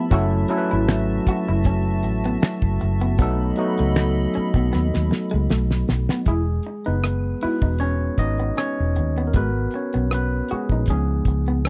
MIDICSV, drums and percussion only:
0, 0, Header, 1, 2, 480
1, 0, Start_track
1, 0, Key_signature, 4, "major"
1, 0, Tempo, 769231
1, 69, Time_signature, 4, 2, 24, 8
1, 7296, End_track
2, 0, Start_track
2, 0, Title_t, "Drums"
2, 70, Note_on_c, 9, 36, 114
2, 72, Note_on_c, 9, 42, 82
2, 132, Note_off_c, 9, 36, 0
2, 135, Note_off_c, 9, 42, 0
2, 301, Note_on_c, 9, 42, 64
2, 363, Note_off_c, 9, 42, 0
2, 552, Note_on_c, 9, 38, 121
2, 553, Note_on_c, 9, 26, 92
2, 557, Note_on_c, 9, 42, 81
2, 614, Note_off_c, 9, 38, 0
2, 615, Note_off_c, 9, 26, 0
2, 619, Note_off_c, 9, 42, 0
2, 791, Note_on_c, 9, 36, 94
2, 791, Note_on_c, 9, 42, 73
2, 853, Note_off_c, 9, 36, 0
2, 854, Note_off_c, 9, 42, 0
2, 1024, Note_on_c, 9, 42, 93
2, 1030, Note_on_c, 9, 36, 86
2, 1086, Note_off_c, 9, 42, 0
2, 1093, Note_off_c, 9, 36, 0
2, 1266, Note_on_c, 9, 42, 69
2, 1329, Note_off_c, 9, 42, 0
2, 1398, Note_on_c, 9, 42, 39
2, 1461, Note_off_c, 9, 42, 0
2, 1514, Note_on_c, 9, 42, 83
2, 1516, Note_on_c, 9, 26, 93
2, 1516, Note_on_c, 9, 38, 116
2, 1576, Note_off_c, 9, 42, 0
2, 1578, Note_off_c, 9, 38, 0
2, 1579, Note_off_c, 9, 26, 0
2, 1635, Note_on_c, 9, 36, 90
2, 1698, Note_off_c, 9, 36, 0
2, 1755, Note_on_c, 9, 42, 57
2, 1817, Note_off_c, 9, 42, 0
2, 1988, Note_on_c, 9, 42, 85
2, 1990, Note_on_c, 9, 36, 112
2, 2050, Note_off_c, 9, 42, 0
2, 2052, Note_off_c, 9, 36, 0
2, 2220, Note_on_c, 9, 42, 56
2, 2283, Note_off_c, 9, 42, 0
2, 2472, Note_on_c, 9, 38, 109
2, 2473, Note_on_c, 9, 26, 95
2, 2477, Note_on_c, 9, 42, 82
2, 2534, Note_off_c, 9, 38, 0
2, 2535, Note_off_c, 9, 26, 0
2, 2539, Note_off_c, 9, 42, 0
2, 2708, Note_on_c, 9, 42, 67
2, 2770, Note_off_c, 9, 42, 0
2, 2833, Note_on_c, 9, 36, 92
2, 2845, Note_on_c, 9, 42, 38
2, 2896, Note_off_c, 9, 36, 0
2, 2908, Note_off_c, 9, 42, 0
2, 2952, Note_on_c, 9, 38, 55
2, 3014, Note_off_c, 9, 38, 0
2, 3083, Note_on_c, 9, 38, 59
2, 3145, Note_off_c, 9, 38, 0
2, 3196, Note_on_c, 9, 38, 75
2, 3258, Note_off_c, 9, 38, 0
2, 3434, Note_on_c, 9, 38, 82
2, 3497, Note_off_c, 9, 38, 0
2, 3561, Note_on_c, 9, 38, 69
2, 3623, Note_off_c, 9, 38, 0
2, 3674, Note_on_c, 9, 38, 80
2, 3736, Note_off_c, 9, 38, 0
2, 3801, Note_on_c, 9, 38, 93
2, 3863, Note_off_c, 9, 38, 0
2, 3904, Note_on_c, 9, 42, 72
2, 3908, Note_on_c, 9, 36, 103
2, 3966, Note_off_c, 9, 42, 0
2, 3970, Note_off_c, 9, 36, 0
2, 4137, Note_on_c, 9, 42, 48
2, 4199, Note_off_c, 9, 42, 0
2, 4391, Note_on_c, 9, 37, 102
2, 4395, Note_on_c, 9, 42, 72
2, 4453, Note_off_c, 9, 37, 0
2, 4458, Note_off_c, 9, 42, 0
2, 4625, Note_on_c, 9, 46, 43
2, 4687, Note_off_c, 9, 46, 0
2, 4754, Note_on_c, 9, 36, 87
2, 4816, Note_off_c, 9, 36, 0
2, 4857, Note_on_c, 9, 42, 89
2, 4920, Note_off_c, 9, 42, 0
2, 5103, Note_on_c, 9, 36, 79
2, 5104, Note_on_c, 9, 42, 63
2, 5165, Note_off_c, 9, 36, 0
2, 5166, Note_off_c, 9, 42, 0
2, 5353, Note_on_c, 9, 42, 76
2, 5354, Note_on_c, 9, 37, 101
2, 5415, Note_off_c, 9, 42, 0
2, 5417, Note_off_c, 9, 37, 0
2, 5590, Note_on_c, 9, 42, 55
2, 5652, Note_off_c, 9, 42, 0
2, 5824, Note_on_c, 9, 42, 67
2, 5829, Note_on_c, 9, 36, 108
2, 5886, Note_off_c, 9, 42, 0
2, 5891, Note_off_c, 9, 36, 0
2, 6057, Note_on_c, 9, 42, 50
2, 6119, Note_off_c, 9, 42, 0
2, 6199, Note_on_c, 9, 42, 41
2, 6262, Note_off_c, 9, 42, 0
2, 6310, Note_on_c, 9, 37, 103
2, 6315, Note_on_c, 9, 42, 69
2, 6372, Note_off_c, 9, 37, 0
2, 6377, Note_off_c, 9, 42, 0
2, 6542, Note_on_c, 9, 42, 63
2, 6605, Note_off_c, 9, 42, 0
2, 6673, Note_on_c, 9, 36, 77
2, 6735, Note_off_c, 9, 36, 0
2, 6775, Note_on_c, 9, 42, 87
2, 6788, Note_on_c, 9, 36, 80
2, 6838, Note_off_c, 9, 42, 0
2, 6850, Note_off_c, 9, 36, 0
2, 7020, Note_on_c, 9, 42, 63
2, 7021, Note_on_c, 9, 36, 80
2, 7082, Note_off_c, 9, 42, 0
2, 7084, Note_off_c, 9, 36, 0
2, 7269, Note_on_c, 9, 42, 71
2, 7270, Note_on_c, 9, 37, 97
2, 7296, Note_off_c, 9, 37, 0
2, 7296, Note_off_c, 9, 42, 0
2, 7296, End_track
0, 0, End_of_file